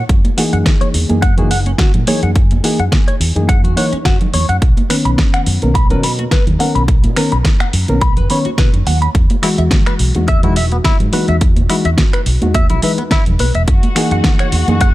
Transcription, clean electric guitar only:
0.38 F#4
0.53 F#5
0.81 C#5
1.22 F#5
1.38 F#4
1.51 F#5
1.66 C#4
1.79 F#4
2.08 C#5
2.23 F#5
2.64 F#4
2.80 F#5
3.08 C#5
3.49 F#5
3.64 F#4
3.77 F#5
3.92 C#4
4.06 F#4
4.34 C#5
4.49 F#5
4.90 B4
5.05 B5
5.34 F#5
5.75 B5
5.91 B4
6.04 B5
6.19 F#4
6.32 B4
6.60 F#5
6.75 B5
7.17 B4
7.32 B5
7.61 F#5
8.02 B5
8.17 B4
8.30 B5
8.46 F#4
8.59 B4
8.87 F#5
9.02 B5
9.43 E4
9.58 E5
9.87 B4
10.28 E5
10.44 E4
10.57 E5
10.72 B3
10.85 E4
11.13 B4
11.29 E5
11.70 E4
11.85 E5
12.13 B4
12.55 E5
12.70 E4
12.83 E5
12.98 B3
13.12 E4
13.40 B4
13.55 E5
13.96 F#4
14.12 F#5
14.40 C#5
14.81 F#5

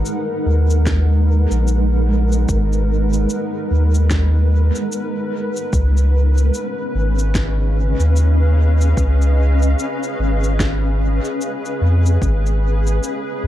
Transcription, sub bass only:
0.46 D#2
1.51 A#1
2.49 G#1
3.71 D#2
5.73 C#2
6.95 G#1
8.00 D#2
8.97 C#2
10.19 G#1
11.81 F2
12.22 G#1
13.44 D#2

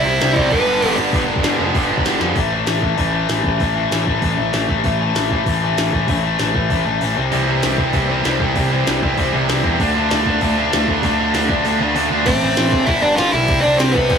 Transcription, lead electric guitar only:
Already playing: E4 E5
0.39 D5
0.52 B3 B4
12.26 C4 C5
12.86 E4 E5
13.02 D4 D5
13.16 F4 F5
13.31 E4 E5
13.61 D4 D5
13.78 C4 C5
13.92 B3 B4

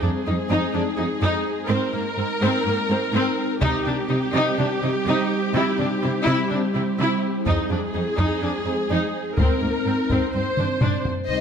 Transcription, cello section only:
0.03 F2
0.27 F2
0.50 F2
0.74 F2
0.98 F2
1.21 F2
1.68 G#2
1.93 G#2
2.17 G#2
2.41 G#2
2.65 G#2
2.89 G#2
3.12 G#2
3.62 C3
3.86 C3
4.10 C3
4.34 C3
4.58 C3
4.82 C3
5.06 C3
5.54 C3
5.78 C3
6.03 C3
6.26 C3
6.51 C3
6.74 C3
6.98 C3
7.46 F2
7.70 F2
7.94 F2
8.18 F2
8.42 F2
8.66 F2
8.90 F2
9.38 G#2
9.62 G#2
9.86 G#2
10.10 G#2
10.34 G2
10.58 G2
10.82 G2
11.29 C3

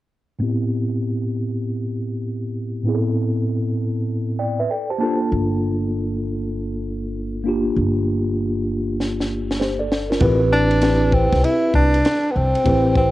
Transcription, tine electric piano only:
0.39 A2 B3 C4 E4
0.43 G4
2.83 A2 B3 C4 E4
2.88 G#4
2.95 A4
4.39 D5 G5
4.60 B4 E5
4.70 A4 D5 G5
4.90 G4 C5 A5
4.98 A#3 D4 F4 A5
5.03 A4
7.44 A#3 D4 F4
7.48 G4
9.60 G4 C5
9.79 A4 D5
10.10 F4 A#4
10.20 C4 E4 G4 B4
10.81 C4 E4 G4 B4
12.64 C4 E4 G4 B4

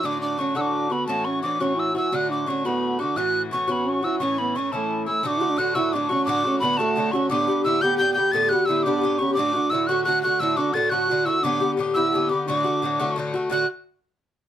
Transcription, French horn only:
0.04 D4
0.21 D4
0.40 C#4
0.57 D4
0.91 B3
1.08 A3
1.26 C#4
1.44 D4
1.61 C#4
1.76 E4
1.94 E4
2.13 F#4
2.30 D4
2.48 C#4
2.65 B3
3.00 D4
3.17 F#4
3.69 B3
3.87 C#4
4.04 E4
4.21 C#4
4.40 B3
4.58 C#4
4.74 A3
5.09 A3
5.25 D4
5.38 E4
5.50 D4
5.61 F#4
5.76 E4
5.94 D4
6.11 C#4
6.29 D4
6.46 C#4
6.62 B3
6.80 A3
7.14 C#4
7.31 D4
7.67 E4
7.83 G4
8.00 G4
8.18 G4
8.35 A4
8.52 F#4
8.69 E4
8.87 D4
9.21 C#4
9.38 D4
9.55 D4
9.72 E4
9.89 F#4
10.06 F#4
10.25 F#4
10.43 E4
10.58 D4
10.75 A4
10.92 F#4
11.10 F#4
11.26 E4
11.42 D4
11.95 E4
12.47 D4
13.50 F#4

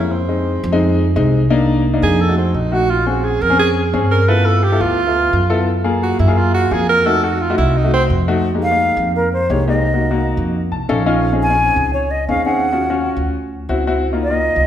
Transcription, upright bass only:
Already playing: F2
0.64 F2
1.16 C2
2.02 F2
2.54 A#1
3.41 F2
3.93 G2
4.80 D2
5.33 F#2
6.19 F#2
6.71 F2
7.58 C2
8.10 F2
8.97 F2
9.50 C2
10.37 F2
10.72 C2
10.89 A#1
11.76 C#2
12.29 D#2
13.16 D2
13.69 C#2
14.56 C#2

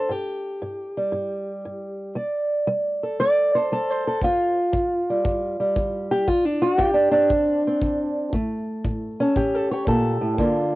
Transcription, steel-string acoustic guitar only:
Already playing: A4 C5
0.09 G2 G4
0.62 G2
0.97 G3
1.12 G2
1.65 G2
2.15 G3 D5
2.67 G3
3.03 A4
3.20 G3 D5
3.55 A4 C5
3.72 G3 A4
3.90 C5
4.07 A4
4.22 G2 F4
4.73 G2
5.10 G3
5.24 G2
5.60 G3
5.76 G2
6.11 G4
6.27 D2 F4
6.45 D4
6.62 F#4
6.78 D2 F4
6.86 G4
6.94 D4
7.11 C4 D4
7.30 D2
7.67 C4
7.82 D2
8.33 A2 A3
8.85 A2
9.20 C#4 A4
9.36 A2 G4
9.55 A4
9.71 G4 C#5
9.88 A#2 A4
10.21 A2
10.38 G2 D3 A#3 F4

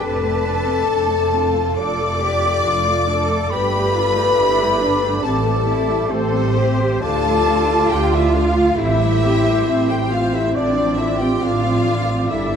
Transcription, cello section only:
Already playing: B4
0.86 A4
1.32 F4
1.78 A4
2.22 G4
2.65 F4
3.09 A4
3.51 G4
3.95 F4
4.38 E4
4.81 D4
5.24 C4
5.66 E4
6.10 A4
6.57 G4
7.03 F4
8.78 E4
9.22 G4
9.67 C4
12.30 E4

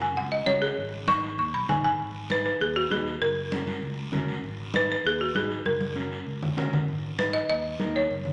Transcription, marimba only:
0.02 G#5
0.17 F#5
0.32 D#5
0.46 C#5
0.62 G#4
1.08 C#6
1.39 C#6
1.54 B5
1.69 G#5
1.84 G#5
2.32 B4
2.46 B4
2.61 G#4
2.76 F#4
2.92 G#4
3.22 A#4
4.76 B4
4.92 B4
5.07 G#4
5.21 F#4
5.36 G#4
5.66 A#4
7.19 B4
7.33 D#5
7.50 D#5
7.96 C#5

